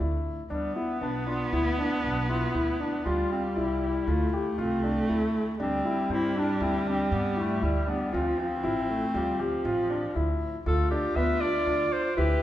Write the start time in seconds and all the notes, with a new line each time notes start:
Already playing: A3
0.00 D2 E4
0.50 D2 G3 B3 D4
0.76 B3 E4
1.01 B1 B3 D4
1.27 D4 F4
1.52 D2 E4
1.78 D4
2.03 B1 D4
2.29 E4 F4
2.54 D2 E4
2.80 D4
3.05 D2 G3 F4
3.31 C4 F4
3.56 C2 E4
4.07 D2 A3 F4
4.33 A3 G4
4.58 C2 C4 F4
4.84 D4
5.09 D2 E4
5.60 D2 G3 C4 D4
5.85 E4
6.10 G2 C4 E4
6.35 D4
6.61 D2 C4 E4
6.87 C4 D4
7.12 G2 B3
7.37 A3 E4
7.62 D2 G3 E4
7.87 B3 D4
8.12 D2 F3 C4 F4
8.38 F4
8.58 E3
8.63 A1 F3 E4
8.90 A3
9.14 D2 G3 F4
9.39 F3 G4
9.65 A1 F4
9.90 D4
10.15 D2 E4
10.66 D2 F4 A4
10.91 D4 G4
11.16 D2 B3 E5
11.41 D4 D5
11.67 D2 D4
11.93 C5
12.17 D2 E4 G4 B4